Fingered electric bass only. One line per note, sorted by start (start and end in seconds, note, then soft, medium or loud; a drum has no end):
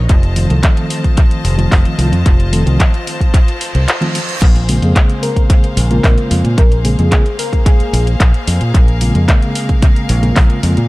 0.09 0.45 F1 loud
0.50 0.60 C2 medium
1.44 1.66 F1 loud
1.72 1.82 F1 medium
1.98 2.09 C2 loud
2.12 2.23 F2 medium
2.26 2.62 F1 loud
2.66 2.77 C2 medium
3.75 3.85 C2 medium
4.42 4.78 A#1 loud
4.82 4.93 F2 medium
5.77 5.98 A#1 loud
6.04 6.15 A#1 medium
6.31 6.42 F2 loud
6.44 6.55 A#2 loud
6.58 6.94 A#1 loud
6.99 7.09 F2 medium
7.80 muted fingered electric bass stroke soft
7.93 8.14 A#1 loud
8.20 8.31 A#1 loud
8.47 8.58 F2 loud
8.61 8.71 A#2 medium
8.74 9.10 A#1 loud
9.15 9.26 F2 medium
10.10 10.31 A#1 loud
10.37 10.47 A#1 medium
10.63 10.74 F2 loud
10.77 10.88 A#2 medium